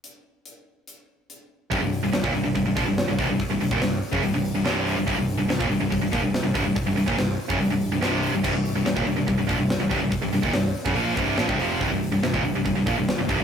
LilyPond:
<<
  \new Staff \with { instrumentName = "Distorted electric guitar" } { \clef bass \time 4/4 \key c \minor \tempo 4 = 143 r1 | <c, g,>16 <c, g,>8 <c, g,>16 <c, g,>16 <ees, bes,>16 <c, g,>16 <c, g,>16 <c, g,>16 <c, g,>16 <bes, f>16 <c, g,>8 <c, g,>16 <c, g,>16 <c, g,>16 | r16 <c, g,>16 <c, g,>16 <ees, bes,>16 <c, g,>8 r16 <fis, des>16 <c, g,>16 <c, g,>8 <c, g,>16 <c, g, c>8. <c, g,>16 | <c, g,>16 <c, g,>8 <c, g,>16 <c, g,>16 <ees, bes,>16 <c, g,>16 <c, g,>16 <c, g,>16 <c, g,>16 <bes, f>16 <c, g,>8 <c, g,>16 <c, g,>16 <c, g,>16 |
r16 <c, g,>16 <c, g,>16 <ees, bes,>16 <c, g,>8 r16 <fis, des>16 <c, g,>16 <c, g,>8 <c, g,>16 <c, g, c>8. <c, g,>16 | <c, g,>16 <c, g,>8 <c, g,>16 <c, g,>16 <ees, bes,>16 <c, g,>16 <c, g,>16 <c, g,>16 <c, g,>16 <bes, f>16 <c, g,>8 <c, g,>16 <c, g,>16 <c, g,>16 | r16 <c, g,>16 <c, g,>16 <ees, bes,>16 <c, g,>8 r16 <fis, des>16 <bes, f bes>8 <c, g, c>8 <bes, f>16 <c, g,>16 <f, c f>8 | <c, g,>16 <c, g,>8 <c, g,>16 <c, g,>16 <ees, bes,>16 <c, g,>16 <c, g,>16 <c, g,>16 <c, g,>16 <bes, f>16 <c, g,>8 <c, g,>16 <c, g,>16 <c, g,>16 | }
  \new Staff \with { instrumentName = "Distorted electric guitar" } { \clef bass \time 4/4 \key c \minor r1 | <c, g,>16 <c, g,>8 <c, g,>16 <c, g,>16 <ees, bes,>16 <c, g,>16 <c, g,>16 <c, g,>16 <c, g,>16 <bes, f>16 <c, g,>8 <c, g,>16 <c, g,>16 <c, g,>16 | r16 <c, g,>16 <c, g,>16 <ees, bes,>16 <c, g,>8 r16 <fis, des>16 <c, g,>16 <c, g,>8 <c, g,>16 <c, g, c>8. <c, g,>16 | <c, g,>16 <c, g,>8 <c, g,>16 <c, g,>16 <ees, bes,>16 <c, g,>16 <c, g,>16 <c, g,>16 <c, g,>16 <bes, f>16 <c, g,>8 <c, g,>16 <c, g,>16 <c, g,>16 |
r16 <c, g,>16 <c, g,>16 <ees, bes,>16 <c, g,>8 r16 <fis, des>16 <c, g,>16 <c, g,>8 <c, g,>16 <c, g, c>8. <c, g,>16 | <c, g,>16 <c, g,>8 <c, g,>16 <c, g,>16 <ees, bes,>16 <c, g,>16 <c, g,>16 <c, g,>16 <c, g,>16 <bes, f>16 <c, g,>8 <c, g,>16 <c, g,>16 <c, g,>16 | r16 <c, g,>16 <c, g,>16 <ees, bes,>16 <c, g,>8 r16 <fis, des>16 <bes, f bes>8 <c, g, c>8 <bes, f>16 <c, g,>16 <f, c f>8 | <c, g,>16 <c, g,>8 <c, g,>16 <c, g,>16 <ees, bes,>16 <c, g,>16 <c, g,>16 <c, g,>16 <c, g,>16 <bes, f>16 <c, g,>8 <c, g,>16 <c, g,>16 <c, g,>16 | }
  \new Staff \with { instrumentName = "Picked electric bass" } { \clef bass \time 4/4 \key c \minor r1 | c,,16 c,,8 c,,16 c,,16 ees,,16 c,,16 c,,16 c,,16 c,,16 bes,,16 c,,8 c,,16 c,,16 c,,16 | r16 c,,16 c,,16 ees,,16 c,,8 r16 fis,,16 c,,16 c,,8 c,,16 c,,8. c,,16 | c,,16 c,,8 c,,16 c,,16 ees,,16 c,,16 c,,16 c,,16 c,,16 bes,,16 c,,8 c,,16 c,,16 c,,16 |
r16 c,,16 c,,16 ees,,16 c,,8 r16 fis,,16 c,,16 c,,8 c,,16 c,,8. c,,16 | c,,16 c,,8 c,,16 c,,16 ees,,16 c,,16 c,,16 c,,16 c,,16 bes,,16 c,,8 c,,16 c,,16 c,,16 | r16 c,,16 c,,16 ees,,16 c,,8 r16 fis,,16 bes,,8 c,,8 bes,,16 c,,16 f,,8 | c,,16 c,,8 c,,16 c,,16 ees,,16 c,,16 c,,16 c,,16 c,,16 bes,,16 c,,8 c,,16 c,,16 c,,16 | }
  \new DrumStaff \with { instrumentName = "Drums" } \drummode { \time 4/4 hh4 hh4 hh4 hh4 | <hho bd>8 hho8 <hho sn>16 bd16 hho8 <hho bd>8 <hho bd sn>8 <hho sn>8 <hho bd>8 | <hho bd>8 hho16 bd16 <hho sn>8 hho16 bd16 hho8 hho8 <hho sn>8 hho8 | <hho bd>8 hho8 <hho sn>16 bd16 hho8 <hho bd>8 <hho bd sn>8 <hho sn>8 <hho bd>8 |
<hho bd>8 hho16 bd16 <hho sn>8 hho16 bd16 hho8 hho8 <hho sn>8 hho8 | <cymc bd>8 hho8 <hho sn>16 bd16 hho8 <hho bd>8 <hho bd>8 <hho sn>8 <hho bd>8 | <hho bd>8 hho16 bd16 <hho sn>8 hho16 bd16 hho8 <hho bd>8 <hho sn>16 bd16 hho8 | <hho bd>8 hho8 <hho sn>16 bd16 hho8 <hho bd>8 <hho bd>8 <hho sn>8 <hho bd>8 | }
>>